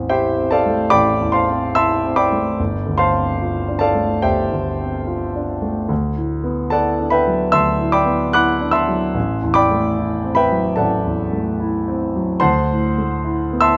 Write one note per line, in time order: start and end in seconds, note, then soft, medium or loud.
0.00 0.89 A1 medium
0.00 1.21 E2 soft
0.00 0.27 C4 soft
0.09 0.55 E4 soft
0.09 0.49 G4 medium
0.09 0.49 C5 medium
0.09 0.49 E5 medium
0.09 0.52 G5 medium
0.38 0.82 C4 soft
0.51 0.90 A4 medium
0.51 0.89 D5 medium
0.51 0.91 F5 medium
0.51 0.93 A5 medium
0.66 1.10 A3 soft
0.90 2.54 A1 soft
0.90 1.30 D5 medium
0.90 1.31 G5 medium
0.90 1.30 B5 medium
0.90 1.33 D6 loud
1.21 1.65 E2 soft
1.32 1.72 C5 medium
1.32 1.73 F5 medium
1.32 1.72 A5 medium
1.32 1.75 C6 medium
1.50 1.93 C4 soft
1.75 2.21 E4 soft
1.75 2.14 E5 medium
1.75 2.15 A5 medium
1.75 2.15 C6 medium
1.75 2.17 E6 medium
2.05 2.48 C4 soft
2.16 2.96 D5 medium
2.16 2.96 G5 medium
2.16 2.96 B5 medium
2.16 3.00 D6 medium
2.32 2.59 A3 soft
2.60 4.21 G1 medium
2.86 3.30 D2 soft
2.98 3.78 C5 medium
2.98 3.78 F5 medium
2.98 3.77 A5 medium
2.98 3.81 C6 medium
3.13 3.57 C4 soft
3.42 3.86 F4 soft
3.68 4.13 D4 soft
3.79 4.21 A4 medium
3.79 4.21 D5 medium
3.79 4.21 F5 medium
3.79 4.23 A5 medium
3.95 4.41 A3 soft
4.22 5.86 G1 soft
4.22 5.44 G4 medium
4.22 5.44 C5 medium
4.22 5.44 E5 medium
4.22 5.48 G5 medium
4.52 4.96 D2 soft
4.81 5.24 C4 soft
5.07 5.52 F4 soft
5.36 5.80 D4 soft
5.62 5.90 A3 soft
5.89 7.49 D2 medium
6.16 6.61 A2 soft
6.44 6.88 B3 soft
6.70 7.16 E4 soft
6.70 7.10 A4 medium
6.70 7.10 D5 medium
6.70 7.11 F#5 medium
6.70 7.12 A5 medium
7.00 7.43 D4 soft
7.10 7.51 B4 medium
7.10 7.50 E5 medium
7.10 7.51 G5 medium
7.10 7.53 B5 medium
7.27 7.71 F#3 soft
7.52 9.12 D2 soft
7.52 7.91 E5 medium
7.52 7.92 A5 medium
7.52 7.92 C6 medium
7.52 7.94 E6 medium
7.80 8.24 A2 soft
7.92 8.31 D5 medium
7.92 8.32 G5 medium
7.92 8.31 B5 medium
7.92 8.33 D6 medium
8.05 8.50 B3 soft
8.33 8.79 E4 soft
8.33 8.73 F#5 medium
8.33 8.72 B5 medium
8.33 8.72 D6 medium
8.33 8.75 F#6 medium
8.61 9.05 D4 soft
8.71 9.51 E5 medium
8.71 9.52 A5 medium
8.71 9.51 C6 medium
8.71 9.55 E6 medium
8.88 9.16 F#3 soft
9.14 10.72 A1 medium
9.42 9.86 E2 soft
9.54 10.32 D5 medium
9.54 10.32 G5 medium
9.54 10.32 B5 medium
9.54 10.35 D6 medium
9.71 10.13 A3 soft
9.99 10.40 E4 soft
10.25 10.67 C4 soft
10.35 10.74 B4 medium
10.35 10.74 E5 medium
10.35 10.74 G5 medium
10.35 10.76 B5 medium
10.51 10.94 F#3 soft
10.76 12.38 A1 soft
10.76 11.96 A4 medium
10.76 11.96 D5 medium
10.76 11.97 F#5 medium
10.76 12.00 A5 medium
11.04 11.49 E2 soft
11.33 11.76 A3 soft
11.60 12.03 E4 soft
11.88 12.31 C4 soft
12.16 12.42 F#3 soft
12.40 13.77 D2 medium
12.40 13.58 C5 medium
12.40 13.59 F#5 medium
12.40 13.58 A5 medium
12.40 13.60 C6 medium
12.72 13.13 A2 soft
12.98 13.40 A3 soft
13.25 13.67 E4 soft
13.53 13.77 B3 soft
13.61 13.77 E5 medium
13.61 13.77 A5 medium
13.61 13.77 C6 medium
13.61 13.77 E6 loud